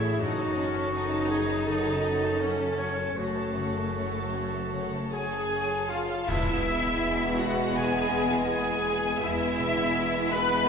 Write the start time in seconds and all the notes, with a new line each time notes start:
Already playing: A1 A2 E3 C#4 E4 G#4 C#5
0.01 C#5 E5 A5
0.19 F#1 F#2 D#4 F#4 A4 C#5 F#5
0.37 A4 C#5 A5
0.56 C#4 A4 C#5 F#5
0.75 A4 C#5 A5
0.93 D#4 A4 C#5 F#5
1.10 A4 C#5 A5
1.29 C#4 G#4 A4 C#5 F#5
1.48 A4 C#5 A5
1.66 C#3 A4 C#5 F#5
1.85 A4 C#5 A5
2.04 C#4 A4 C#5 F#5
2.22 A4 C#5 A5
2.40 C#4 A4 C#5 F#5
2.59 A4 C#5 A5
2.78 C#4 A4 C#5 F#5
2.97 A4 C#5 A5
3.16 F#1 F#2 A3 F#4 A4 C#5 F#5
3.36 A4 C#5 A5
3.56 C#3 A4 C#5 F#5
3.75 A4 C#5 A5
3.94 A4 C#5 F#5
4.13 A4 C#5 A5
4.32 C#4 A4 C#5 F#5
4.52 A4 C#5 A5
4.72 C#3 A4 C#5 F#5
4.92 A4 C#5 A5
5.11 C#4 G#4 A4 C#5 F#5 G#5
5.31 A4 C#5 A5
5.50 A4 C#5 F#5
5.71 A4 C#5 A5
5.89 C#4 F4 A4 C#5 F5 F#5
6.08 A4 C#5 A5
6.27 E1 E2 G#3 B3 E4 E5, concert bass drum, crash
6.66 G#3
7.02 G#4
7.39 G#3 F#4 F#5
7.76 B2 G#4 G#5
8.13 G#3
8.49 G#4 G#5
8.87 G#3
9.21 E1 E2 G#3 B3 E4 E5
9.59 B2
9.95 G#4
10.31 G#3 B4 B5